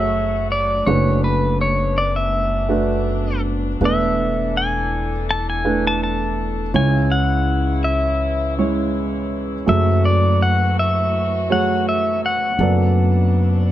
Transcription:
Already playing: F#1 F#2 F#3 A3 F#4 G#4 C#5 E5
0.52 D5
0.87 F#1 F#2 A3 B3 D4 F#4 B4 C#5
1.24 B4
1.61 C#5
1.98 D5
2.16 E5
2.69 A3 D4 F#4 B4
3.79 E1 E2 E3 A3 D4 E4 A4 B4
3.85 E5
4.57 G#5
5.31 A5
5.50 G#5
5.65 A3 D4 E4 B4
5.87 A5
6.04 A5
6.73 C#2 C#3 E3 G#3 C#4 E4 C#5 G#5
7.12 F#5
7.84 E5
8.58 G#3 C#4 E4 C#5
9.65 F#1 F#2 F#3 A3 F#4 G#4 A4 E5
10.05 D5
10.42 F#5
10.79 E5
11.50 F#3 A3 G#4 C#5 F#5
11.89 E5
12.26 F#5
12.59 F#1 F#2 F#3 B3 D4 A4 D5

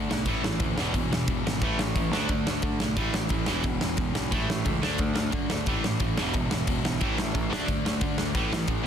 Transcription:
Already playing: D3 A3 D4
0.09 B1 D3 A3, snare
0.25 A1 A2 E3 A3, kick, crash
0.44 A1 A2 E3, snare
0.59 D2 A2 E3, kick, crash
0.75 E1 E2 B2, snare
0.80 E3
0.93 E1 E2 B2, kick, crash
1.10 E1 E2 B2, snare
1.28 E1 E2 B2, kick, crash
1.45 G#1 E2 B2, snare
1.61 A1 A2 E3 A3, kick, crash
1.78 A1 A2 E3, snare
1.95 A1 A2 E3, kick, crash
2.11 D2 D3 A3 D4, snare
2.29 D2 D3 A3, kick, crash
2.46 D3 A3, snare
2.62 D3 A3, kick, crash
2.79 B1 D3 A3, snare
2.96 A1 A2 E3 A3, kick, crash
3.14 A1 A2 E3, snare
3.29 A1 A2 E3, kick, crash
3.46 E1 E2 B2 E3, snare
3.63 E1 E2 B2, kick, crash
3.81 E1 E2 B2, snare
3.97 E1 E2 B2, kick, crash
4.15 B1 E2 B2, snare
4.31 A1 A2 E3 A3, kick, crash
4.47 A1 A2 E3, snare
4.65 C#2 A2 E3, kick, crash
4.82 D2 D3 A3 D4, snare
4.98 D2 D3 A3, kick, crash
5.15 D3 A3, snare
5.31 D3 A3, kick, crash
5.50 D2 D3 A3, snare
5.66 A1 A2 E3 A3, kick, crash
5.84 A1 A2 E3, snare
6.00 A1 A2 E3, kick, crash
6.17 E1 E2 B2 E3, snare
6.34 E1 E2 B2, kick, crash
6.51 E1 E2 B2, snare
6.67 E1 E2 B2, kick, crash
6.85 B1 E2 B2, snare
7.00 A1 A2 E3 A3, kick, crash
7.18 A1 A2 E3, snare
7.34 A1 A2 E3, kick, crash
7.50 D2 D3 A3 D4, snare
7.68 D2 D3 A3, kick, crash
7.85 D3 A3, snare
8.01 D3 A3, kick, crash
8.18 D2 D3 A3, snare
8.35 A1 A2 E3 A3, kick, crash
8.52 A1 A2 E3, snare
8.67 A1 A2 E3, kick, crash
8.83 E2 B2

